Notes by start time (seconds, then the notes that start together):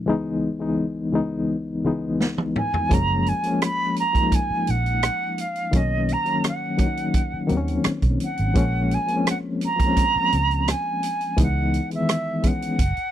0.06 C#2 E3 G#3 B3 D#4
0.59 C#2 E3 G#3 B3 D#4
1.12 C#2 E3 G#3 B3 D#4
1.84 C#2 E3 G#3 B3 D#4
2.21 snare
2.38 high tom
2.56 G#5, mid tom
2.74 floor tom
2.89 F#1 F3 G#3 A#3 C#4, kick, closed hi-hat
2.94 A#5
3.26 G#5, closed hi-hat
3.43 F3 G#3 A#3 C#4, closed hi-hat
3.62 B5, cross-stick, closed hi-hat
3.96 A#5, closed hi-hat
4.13 F3 G#3 A#3 D#4, kick, closed hi-hat
4.32 G#5, kick, closed hi-hat
4.50 muted fingered electric bass stroke
4.67 A#1 F#5, closed hi-hat
4.86 closed hi-hat
5.03 cross-stick, closed hi-hat
5.38 F5, closed hi-hat
5.55 closed hi-hat
5.71 B1 D#3 F#3 A#3, kick, closed hi-hat
5.76 C#4 D#5
6.09 A#5, closed hi-hat
6.24 D#3 F#3 A#3 C#4, closed hi-hat
6.44 cross-stick, closed hi-hat
6.48 F#5
6.77 D#3 F#3 A#3 C#4, kick, closed hi-hat
6.87 D#4
6.97 closed hi-hat
7.14 kick, closed hi-hat
7.34 muted fingered electric bass stroke
7.47 D#2 D#3 F#3 A#3 C4, closed hi-hat
7.57 C#4
7.68 closed hi-hat
7.84 muted fingered electric bass stroke, cross-stick, closed hi-hat
8.02 B1, kick, closed hi-hat
8.20 F#5, closed hi-hat
8.37 G#1, closed hi-hat
8.54 A#1 F3 G#3 A#3 C#4, kick, closed hi-hat
8.91 G#5, closed hi-hat
9.07 F3 G#3 A#3 C4, closed hi-hat
9.16 C#4
9.27 F#5, cross-stick, closed hi-hat
9.61 closed hi-hat
9.65 A#5
9.76 F3 G#3 A#3 C4, kick, closed hi-hat
9.86 C#4
9.96 kick, closed hi-hat
10.16 muted fingered electric bass stroke
10.32 C#2, closed hi-hat
10.51 closed hi-hat
10.68 G#5, cross-stick, closed hi-hat
11.03 closed hi-hat
11.21 closed hi-hat
11.37 C#2 E3 G#3 B3 D#4, kick, closed hi-hat
11.42 F#5
11.74 closed hi-hat
11.90 D#3 E3 G#3 B3, closed hi-hat
11.95 E5
12.09 cross-stick, closed hi-hat
12.43 E3 G#3 B3 C#4, kick, closed hi-hat
12.47 F#5
12.62 closed hi-hat
12.79 F#1, kick, closed hi-hat
12.97 muted fingered electric bass stroke, closed hi-hat